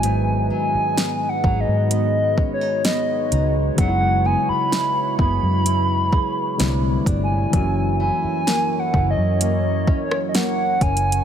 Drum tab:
HH |x-----------x-----------x-----------x-----x-----|x-----------x-----------x-----------x-----x-----|x-----------x-----------x-----------x-----x-x-x-|
SD |------------o-----------------------o-----------|------------o-----------------------o-----------|------------o--------------------r--o-----------|
BD |------------------o-----------o-----------------|o-----------------o-----------o-----------o-----|o-----------------o-----------o-----------o-----|